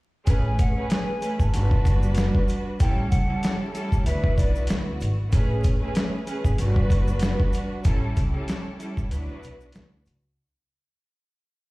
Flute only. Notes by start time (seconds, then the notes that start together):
0.45 G#5
0.60 F#5
0.90 G#5
1.40 A5
2.81 G5
3.10 F#5
4.06 E5
4.36 D5